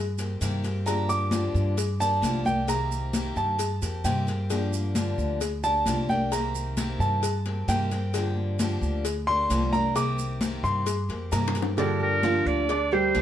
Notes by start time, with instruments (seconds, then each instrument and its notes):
Already playing: upright bass G2
0.18 steel-string acoustic guitar A#3 C4 G4, cowbell, high conga, maracas
0.41 upright bass G2, steel-string acoustic guitar C3 D#3 A#3 C4 G4, cowbell, high conga, maracas
0.64 steel-string acoustic guitar A#3 C4 G4, cowbell, high conga, maracas
0.86 steel-string acoustic guitar D3 F3 A#3 D4 G4, grand piano A#5, cowbell, high conga, maracas
1.09 grand piano D6, high conga, maracas
1.31 steel-string acoustic guitar D3 F3 A#3 D4 G4, cowbell, high conga, maracas
1.54 upright bass G2, high conga, maracas
1.77 muted steel-string acoustic guitar stroke, cowbell, high conga, maracas
2.00 steel-string acoustic guitar A#3 D4 G4, grand piano A5, high conga, maracas
2.22 upright bass C2, steel-string acoustic guitar D3 F3 A#3 D4 G4, cowbell, high conga, maracas
2.45 steel-string acoustic guitar A#3 D4 G4, grand piano G5, high conga, maracas
2.67 steel-string acoustic guitar C3 D#3 A#3 C4 G4, grand piano A#5, cowbell, high conga, maracas
2.91 high conga, maracas
3.13 steel-string acoustic guitar C3 D#3 A#3 C4 G4, cowbell, high conga, maracas
3.36 upright bass G2, grand piano A5, high conga, maracas
3.59 muted steel-string acoustic guitar stroke, cowbell, high conga, maracas
3.82 upright bass F2, steel-string acoustic guitar A#3 C4 G4, cowbell, high conga, maracas
4.04 upright bass G2, steel-string acoustic guitar C3 D#3 A#3 C4 G4, grand piano G5, cowbell, high conga, maracas
4.27 steel-string acoustic guitar A#3 C4 G4, cowbell, high conga, maracas
4.50 steel-string acoustic guitar D3 F3 A#3 D4 G4, cowbell, high conga, maracas
4.73 high conga, maracas
4.95 steel-string acoustic guitar D3 F3 A#3 D4 G4, cowbell, high conga, maracas
5.18 upright bass D2, high conga, maracas
5.41 muted steel-string acoustic guitar stroke, cowbell, high conga, maracas
5.64 steel-string acoustic guitar A#3 D4 G4, grand piano A5, high conga, maracas
5.86 upright bass C2, steel-string acoustic guitar D3 F3 A#3 D4 G4, cowbell, high conga, maracas
6.09 steel-string acoustic guitar A#3 D4 G4, grand piano G5, high conga, maracas
6.32 steel-string acoustic guitar C3 D#3 A#3 C4 G4, grand piano A#5, cowbell, high conga, maracas
6.55 high conga, maracas
6.77 steel-string acoustic guitar C3 D#3 A#3 C4 G4, cowbell, high conga, maracas
6.99 upright bass G2, grand piano A5, high conga, maracas
7.23 muted steel-string acoustic guitar stroke, cowbell, high conga, maracas
7.46 steel-string acoustic guitar A#3 C4 G4, cowbell, high conga
7.68 upright bass G2, steel-string acoustic guitar C3 D#3 A#3 C4 G4, grand piano G5, cowbell, high conga, maracas
7.91 steel-string acoustic guitar A#3 C4 G4, cowbell, high conga, maracas
8.14 steel-string acoustic guitar D3 F3 A#3 D4 G4, cowbell, high conga, maracas
8.36 high conga
8.59 steel-string acoustic guitar D3 F3 A#3 D4 G4, cowbell, high conga, maracas
8.81 upright bass D2, high conga, maracas
9.05 muted steel-string acoustic guitar stroke, cowbell, high conga, maracas
9.27 steel-string acoustic guitar A#3 D4 G4, grand piano C6, high conga
9.50 upright bass C2, steel-string acoustic guitar D3 F3 A#3 D4 G4, cowbell, high conga, maracas
9.73 steel-string acoustic guitar A#3 D4 G4, grand piano A#5, high conga, maracas
9.95 steel-string acoustic guitar C3 D#3 A#3 C4 G4, grand piano D6, cowbell, high conga, maracas
10.19 high conga, maracas
10.41 steel-string acoustic guitar C3 D#3 A#3 C4 G4, cowbell, high conga, maracas
10.63 upright bass G2, grand piano C6, high conga, maracas
10.86 muted steel-string acoustic guitar stroke, cowbell, high conga, maracas
11.09 upright bass F2, steel-string acoustic guitar A#3 C4 G4, cowbell, high conga
11.32 upright bass G2, steel-string acoustic guitar C3 D#3 A#3 C4 G4, grand piano A#5, cowbell, high bongo, high conga, maracas
11.48 low bongo
11.55 steel-string acoustic guitar A#3 C4 G4, cowbell, high conga, maracas
11.62 low bongo
11.78 steel-string acoustic guitar D3 F3 A#3 D4 G4, grand piano D3 D4 D5, clarinet A#4, cowbell, high conga
12.00 nylon-string guitar G4, clarinet A#4, high conga
12.23 steel-string acoustic guitar D3 F3 A#3 D4 G4, grand piano F3 F4 F5, cowbell, high conga
12.45 upright bass D2, nylon-string guitar A#4, clarinet D5, high conga
12.69 grand piano D4 D5 D6, muted steel-string acoustic guitar stroke, cowbell, high conga
12.91 grand piano G3 G4 G5, steel-string acoustic guitar A#3 D4 G4, clarinet C5, high conga
13.15 upright bass C2, steel-string acoustic guitar D3 F3 A#3 D4 G4, cowbell, high conga